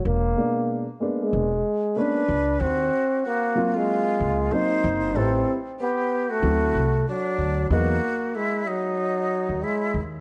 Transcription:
0.05 0.32 E1 loud
0.05 0.88 A#3 loud
0.36 0.84 B2 medium
0.36 0.83 G#3 medium
0.36 0.84 A#3 medium
0.36 0.84 D4 medium
1.00 1.47 G#3 medium
1.00 1.47 A#3 medium
1.00 1.48 B3 medium
1.00 1.48 D4 medium
1.20 1.99 G#3 medium
1.33 1.60 E1 medium
1.96 2.20 G#3 medium
1.96 2.20 A#3 medium
1.96 2.21 B3 medium
1.96 2.21 C#4 medium
1.96 2.63 D4 loud
1.96 2.62 B4 medium
2.28 2.56 C#2 medium
2.60 2.87 D#2 medium
2.60 3.25 C4 loud
2.60 3.23 F#4 medium
3.23 3.78 A#3 medium
3.23 3.76 F#4 medium
3.56 4.46 F#3 medium
3.56 4.46 A#3 medium
3.56 4.47 C4 medium
3.56 4.47 F4 medium
3.74 4.56 G#3 medium
3.74 4.53 F4 medium
4.20 4.47 C#2 medium
4.51 5.15 F#3 medium
4.51 5.16 A#3 medium
4.51 5.15 C4 medium
4.51 5.16 D#4 medium
4.51 5.19 D#4 loud
4.51 5.17 C5 medium
4.84 5.15 F#1 medium
5.15 5.43 A1 medium
5.15 5.55 G3 medium
5.15 5.55 C4 medium
5.15 5.54 C4 loud
5.15 5.56 E4 medium
5.15 5.53 A4 medium
5.15 5.55 B4 medium
5.80 6.32 B3 loud
5.80 6.31 G4 medium
6.30 7.08 A3 loud
6.30 7.06 F#4 medium
6.43 6.70 D2 medium
6.43 6.82 F#3 medium
6.43 6.83 A3 medium
6.43 6.83 C4 medium
6.43 6.83 E4 medium
6.75 7.02 C2 medium
7.07 7.68 F#3 medium
7.07 7.67 D4 medium
7.38 7.66 D2 medium
7.70 7.98 E2 medium
7.70 7.94 F#3 medium
7.70 7.95 G#3 medium
7.70 8.37 A#3 loud
7.70 7.95 B3 medium
7.70 7.95 D#4 medium
7.70 8.36 F#4 medium
8.35 8.69 G#3 medium
8.35 8.69 E4 medium
8.67 9.65 F#3 loud
8.67 9.65 D#4 medium
9.49 9.60 D#2 medium
9.63 10.00 G#3 medium
9.63 10.00 E4 medium
9.94 10.21 D#2 medium

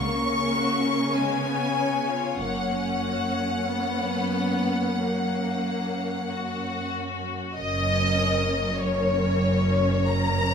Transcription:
0.00 1.11 C#2 soft
0.00 2.41 C#3 soft
0.00 0.23 A#3 soft
0.00 1.16 A#3 soft
0.00 2.37 C#4 soft
0.00 1.12 A#4 soft
0.00 1.12 C#6 medium
0.25 0.55 C#4 soft
0.53 0.84 F#4 soft
0.84 1.15 C#4 soft
1.13 1.43 G#3 soft
1.13 2.39 B3 soft
1.13 3.56 C#5 soft
1.13 2.41 G#5 medium
1.45 1.77 B3 soft
1.75 2.08 C#4 soft
2.07 2.40 F4 soft
2.40 3.66 F#1 soft
2.40 7.33 F#2 soft
2.40 2.70 A#3 soft
2.40 7.37 A#3 soft
2.40 7.33 C#4 soft
2.40 6.91 F#5 medium
2.73 3.05 C#4 soft
3.05 3.37 F#4 soft
3.37 3.70 C#4 soft
3.69 4.96 B3 soft
4.99 6.29 A#3 soft
6.28 7.57 F#4 soft
7.56 10.54 F#1 soft
7.56 10.54 F#2 soft
7.56 8.76 C#4 soft
7.56 8.76 A#4 soft
7.56 8.75 D#5 medium
8.78 10.06 C#4 soft
8.78 10.06 A#4 soft
8.78 10.08 C#5 medium
8.78 10.09 C#5 medium
10.07 10.54 C#4 medium
10.07 10.54 A#4 medium
10.07 10.54 A#5 medium

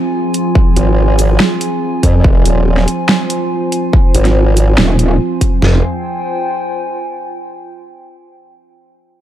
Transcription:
0.00 5.58 F3 medium
0.00 5.58 C4 medium
0.00 5.61 F4 medium
0.00 2.23 G#4 medium
0.00 5.62 G#5 medium
0.34 closed hi-hat medium
0.55 kick loud
0.76 1.38 G#1 loud
0.76 closed hi-hat medium
1.19 closed hi-hat medium
1.19 shaker medium
1.40 snare loud
1.61 closed hi-hat medium
2.03 2.23 F2 loud
2.03 kick medium
2.03 closed hi-hat medium
2.24 2.44 F1 loud
2.24 5.61 C5 medium
2.24 kick loud
2.45 2.86 D#1 loud
2.45 closed hi-hat medium
2.77 snare soft
2.88 closed hi-hat medium
3.09 snare loud
3.30 closed hi-hat medium
3.72 closed hi-hat medium
3.93 kick loud
4.14 4.76 G#1 loud
4.14 closed hi-hat medium
4.25 snare soft
4.25 closed hi-hat soft
4.57 closed hi-hat medium
4.57 shaker medium
4.78 5.18 D#1 loud
4.78 snare loud
4.99 closed hi-hat medium
5.41 kick medium
5.41 closed hi-hat medium
5.62 5.82 F1 loud
5.62 7.27 F4 medium
5.62 snare loud
5.62 floor tom loud
5.69 7.27 C5 medium
5.75 7.27 G5 medium
5.81 7.27 G#5 medium

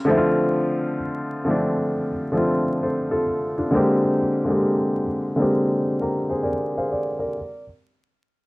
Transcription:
0.00 0.11 C#3 medium
0.00 0.11 G3 medium
0.00 0.08 A3 medium
0.00 0.09 C4 medium
0.00 0.11 F4 medium
0.00 0.11 A#4 medium
0.00 0.11 D5 medium
0.05 0.95 D3 loud
0.05 0.96 F3 medium
0.05 0.97 A3 medium
0.09 0.98 C4 medium
0.09 0.18 E4 medium
0.17 1.02 F4 loud
1.45 2.07 D3 medium
1.45 2.08 F3 medium
1.45 2.09 A3 medium
1.49 2.09 C4 medium
1.49 2.10 D4 medium
2.32 3.22 D3 medium
2.32 3.23 F3 medium
2.32 3.24 A3 medium
2.36 3.25 C4 medium
2.36 2.82 F4 medium
2.83 3.10 A4 soft
2.83 3.11 C5 medium
3.11 3.55 F4 medium
3.11 3.55 A4 medium
3.58 4.01 D4 soft
3.58 4.01 F4 medium
3.71 4.16 D3 medium
3.71 4.17 G#3 medium
3.71 4.17 A#3 medium
3.71 4.18 C4 loud
3.76 4.19 G4 loud
4.45 5.01 D3 medium
4.45 5.01 G#3 medium
4.45 5.02 A#3 medium
4.49 5.03 C4 medium
4.49 5.03 G4 medium
5.36 6.48 D3 medium
5.36 6.48 G#3 medium
5.36 6.49 A#3 medium
5.40 6.50 C4 medium
5.40 6.00 G4 medium
6.01 6.29 G4 soft
6.01 6.29 A#4 medium
6.01 6.43 A#5 medium
6.29 6.45 G#4 medium
6.29 6.44 C5 medium
6.43 6.73 A#4 medium
6.43 6.72 D5 medium
6.43 6.72 G#5 medium
6.77 7.20 G#4 medium
6.77 7.20 C5 medium
6.77 6.91 F5 medium
6.92 7.17 D5 medium
7.19 7.63 A#4 soft
7.19 7.63 D5 medium

